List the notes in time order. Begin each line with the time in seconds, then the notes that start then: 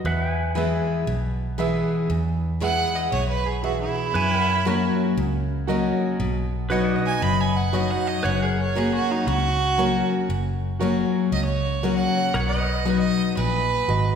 0.04 E2 B4 E5 F#5
0.32 G#5
0.55 E3 G#3 B3 E4 G#4 B4 E5
1.07 B1 B2
1.58 E3 G#3 B3 E4 G#4 B4 E5
2.10 E2
2.60 E3 G#3 B3 E4 G#4 B4 E5 F#5
2.95 D#5
3.12 B1 B2 C#5
3.28 B4
3.46 G#4
3.63 E2 F#4 G#4 B4 E5
3.80 E4
4.14 F#2 B4 C#5 G#5
4.34 A#4
4.41 F#5
4.65 F#3 A#3 C#4 F#4 A#4 C#5
5.17 C#2 C#3
5.67 F#3 A#3 C#4 F#4 A#4 D#5
6.19 B1 B2
6.70 F#3 B3 D#4 F#4 B4 C#5 D#5 F#5
6.96 D#4 F#4 D#5
7.06 G#5
7.22 F#1 F#2 B5
7.40 G#5
7.56 F#5
7.73 F#3 B3 D#4 F#4 B4 C#5 D#5
7.90 F#5
8.08 D#5
8.23 F#1 F#2 B4 C#5 F#5
8.42 G#4 A#4
8.60 C#5
8.75 F#3 A#3 C#4 F#4 G#4 A#4 C#5
8.94 F#4
9.11 D#4
9.27 C#2 C#3 F#4
9.78 F#3 A#3 C#4 F#4 A#4 C#5
10.29 F#1 F#2
10.79 F#3 A#3 C#4 F#4 A#4 C#5
11.32 C#2 C#3 D#5
11.45 C#5
11.83 F#3 A#3 C#4 F#4 A#4 C#5
11.96 F#5
12.34 B1 B2 A#4 C#5 F#5
12.48 D#5
12.54 B4
12.61 D#5
12.85 F#3 B3 D#4 F#4 B4 D#5
12.99 D#5
13.37 A#1 A#2 B4
13.88 G#1 G#2 F#4 B4 D#5